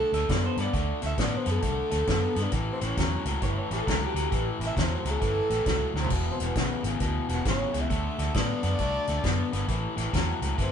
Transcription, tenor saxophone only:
0.00 0.73 A4 loud
1.06 1.20 E5 medium
1.22 1.39 D5 medium
1.37 1.50 C5 medium
1.51 2.44 A4 medium
2.43 2.55 D4 medium
2.72 2.87 C4 medium
2.85 3.28 C#4 medium
4.67 4.84 E5 medium
4.83 4.95 C5 medium
4.97 5.09 C5 medium
5.10 5.96 A4 loud
6.01 6.13 C4 medium
6.32 6.47 C4 medium
6.46 6.87 B3 loud
7.34 7.47 F#4 medium
7.49 7.82 C#5 medium
7.80 8.36 E5 medium
8.39 9.67 D5 loud
10.62 10.72 C4 medium

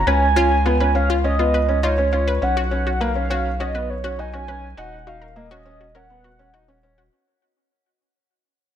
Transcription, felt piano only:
0.07 0.25 C#4 loud
0.36 0.54 C#4 medium
0.66 0.74 B3 medium
0.80 0.89 C#4 medium
0.95 1.13 C#4 medium
1.24 1.33 C#4 medium
1.39 1.57 B3 medium
1.68 1.77 C#4 medium
1.83 1.92 D#4 medium
1.98 2.07 C#4 medium
2.12 2.30 C#4 medium
2.42 2.60 C#4 medium
2.71 2.89 C#4 medium
3.01 3.10 A#3 medium
3.15 3.24 C#4 medium
3.30 3.48 C#4 medium
3.60 3.69 C#4 medium
3.74 3.92 B3 medium
4.04 4.13 C#4 medium
4.19 4.28 D#4 medium
4.34 4.43 C#4 medium
4.48 4.66 C#4 medium
4.78 4.95 D#4 loud
5.07 5.25 D#4 medium
5.36 5.45 A#3 medium
5.51 5.60 C#4 medium
5.65 5.83 C#4 medium
5.95 6.04 C#4 medium
6.10 6.28 B3 medium
6.39 6.48 C#4 medium
6.54 6.63 D#4 medium
6.69 6.77 C#4 medium
6.83 7.01 C#4 medium

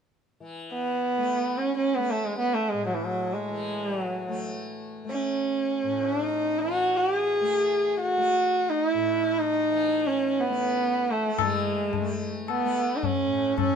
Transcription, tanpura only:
0.40 3.49 E3 soft
1.17 1.97 A3 soft
1.97 4.28 A3 soft
2.73 5.83 A2 soft
3.50 6.62 E3 medium
4.28 5.04 A3 soft
5.04 7.41 A3 soft
5.84 8.94 A2 soft
6.62 9.69 E3 soft
7.41 8.17 A3 medium
8.17 10.48 A3 medium
8.94 13.25 A2 medium
9.70 11.37 E3 soft
10.48 11.26 A3 medium
11.26 12.00 A3 soft
11.37 13.75 E3 soft
12.00 12.62 A3 soft
12.62 13.75 A3 medium
13.25 13.75 A2 medium

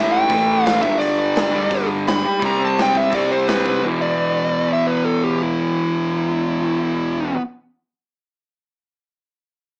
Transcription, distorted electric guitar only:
0.00 0.28 A2 medium
0.00 0.30 E3 medium
0.00 0.31 A3 medium
0.29 0.81 A2 medium
0.29 0.83 E3 medium
0.35 0.84 A3 medium
0.81 1.52 G2 medium
0.81 1.53 D3 medium
0.87 1.52 G3 medium
1.52 2.24 D3 medium
1.52 2.42 G3 medium
1.59 2.26 G2 medium
2.39 3.10 C3 medium
2.39 3.12 G3 medium
2.45 3.13 C4 medium
3.11 3.81 C3 medium
3.11 3.83 G3 medium
3.17 3.85 C4 medium
3.83 7.33 E2 medium
3.83 7.35 B2 medium
3.83 7.36 E3 medium

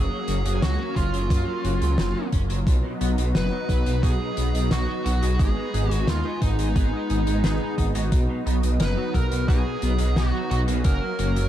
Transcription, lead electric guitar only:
0.00 0.51 G#4 loud
0.55 0.62 G#4 medium
0.62 0.96 F#4 loud
0.96 2.29 F4 medium
3.35 4.03 B4 loud
4.03 4.73 G#4 loud
4.71 5.03 F#4 loud
5.06 5.41 F#4 loud
5.40 5.93 G#4 loud
5.93 6.10 F#4 loud
6.08 6.41 F4 loud
6.42 7.74 D#4 medium
8.80 9.12 B4 loud
9.14 9.48 A#4 loud
9.48 10.19 G#4 loud
10.17 10.50 F#4 medium
10.51 10.60 F#4 medium
10.85 11.49 A#4 loud

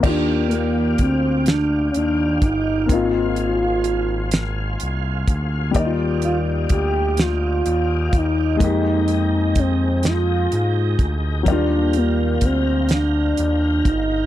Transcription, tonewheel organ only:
0.03 5.71 F4 medium
0.03 2.86 G4 medium
0.03 2.86 D5 medium
0.03 8.57 F5 medium
2.88 5.72 G#4 medium
2.88 5.72 C5 medium
5.73 11.42 D#4 medium
5.73 8.57 G4 medium
5.73 8.57 D5 medium
8.59 11.43 G#3 medium
8.59 14.26 G5 medium
8.59 11.43 A#5 medium
11.45 14.26 F4 medium
11.45 14.26 F5 medium
11.45 14.26 A#5 medium

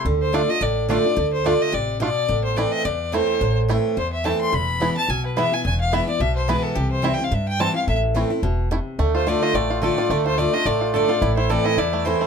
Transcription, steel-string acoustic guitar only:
0.06 0.31 D3 medium
0.32 0.48 D3 medium
0.32 0.48 A3 medium
0.32 0.48 D4 medium
0.32 0.47 F4 medium
0.48 0.62 D4 soft
0.48 0.61 F4 medium
0.61 1.15 A2 loud
0.89 1.04 D3 medium
0.89 1.04 A3 medium
0.89 1.05 D4 medium
0.89 1.03 F4 loud
1.04 1.17 D4 soft
1.04 1.16 F4 medium
1.16 1.43 D3 medium
1.44 1.72 D3 medium
1.44 1.72 A3 medium
1.44 1.72 D4 medium
1.44 1.73 F4 medium
1.72 2.00 C3 medium
2.00 2.27 B2 medium
2.28 2.82 A2 medium
2.56 2.84 E3 medium
2.56 2.84 A3 medium
2.56 2.84 C4 medium
2.56 2.85 E4 medium
2.85 3.39 E2 loud
3.12 3.39 E3 medium
3.12 3.40 A3 medium
3.12 3.40 C4 medium
3.12 3.40 E4 medium
3.41 3.95 A2 medium
3.68 3.95 E3 medium
3.68 3.96 A3 medium
3.68 3.96 C4 medium
3.68 3.97 E4 medium
3.97 4.50 E2 medium
4.24 4.51 E3 medium
4.24 4.52 A3 medium
4.24 4.52 C4 medium
4.24 4.52 E4 medium
4.52 5.06 E2 medium
4.80 4.95 E3 medium
4.80 4.96 G#3 medium
4.80 4.96 B3 medium
4.80 4.95 E4 medium
4.96 5.09 B3 medium
4.96 5.08 E4 medium
5.09 5.62 B2 medium
5.36 5.51 E3 medium
5.36 5.52 G#3 medium
5.36 5.52 B3 loud
5.36 5.51 E4 medium
5.52 5.65 B3 soft
5.52 5.64 E4 medium
5.65 6.18 E2 medium
5.92 6.07 E3 medium
5.92 6.07 G#3 medium
5.92 6.08 B3 medium
5.92 6.06 E4 loud
6.07 6.21 B3 soft
6.07 6.20 E4 medium
6.20 6.74 B2 medium
6.48 6.75 E3 medium
6.48 6.75 G#3 medium
6.48 6.75 B3 medium
6.48 6.76 E4 medium
6.75 7.29 C3 medium
7.02 7.18 E3 medium
7.02 7.18 G3 medium
7.02 7.19 C4 medium
7.02 7.17 E4 medium
7.19 7.32 C4 medium
7.19 7.31 E4 medium
7.32 7.85 G2 medium
7.59 7.74 E3 medium
7.59 7.75 G3 medium
7.59 7.75 C4 medium
7.59 7.73 E4 loud
7.74 7.88 C4 soft
7.74 7.86 E4 medium
7.88 8.41 A2 medium
8.15 8.30 E3 medium
8.15 8.30 A3 medium
8.15 8.30 C4 medium
8.15 8.29 E4 medium
8.30 8.44 C4 medium
8.30 8.43 E4 medium
8.43 8.70 B2 medium
8.71 8.98 C3 medium
8.99 9.25 D3 medium
9.27 9.53 D3 medium
9.27 9.54 A3 medium
9.27 9.54 D4 medium
9.27 9.55 F4 medium
9.55 10.08 A2 medium
9.82 9.97 D3 medium
9.82 9.97 A3 medium
9.82 9.98 D4 medium
9.82 9.96 F4 loud
9.98 10.11 D4 medium
9.98 10.10 F4 medium
10.11 10.37 D3 medium
10.38 10.53 D3 medium
10.38 10.53 A3 medium
10.38 10.54 D4 medium
10.38 10.52 F4 medium
10.54 10.67 D4 medium
10.54 10.66 F4 medium
10.66 11.20 A2 loud
10.94 11.09 D3 medium
10.94 11.09 A3 medium
10.94 11.10 D4 medium
10.94 11.07 F4 medium
11.09 11.22 D4 soft
11.09 11.21 F4 medium
11.22 11.75 A2 medium
11.49 11.76 E3 medium
11.49 11.77 A3 medium
11.49 11.77 C4 medium
11.49 11.77 E4 medium
11.78 12.27 E2 medium
12.05 12.27 E3 medium
12.05 12.27 A3 medium
12.05 12.27 C4 medium
12.05 12.27 E4 loud

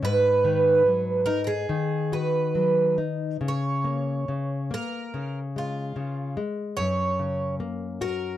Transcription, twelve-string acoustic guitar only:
0.05 1.25 B4 loud
1.26 1.41 A#4 medium
1.44 2.14 G#4 medium
1.44 1.50 A#4 medium
2.13 2.95 B4 medium
3.48 4.74 C#5 medium
4.74 5.39 A#4 medium
5.58 6.35 F4 medium
6.77 7.54 C#5 medium
8.02 8.37 A#4 medium

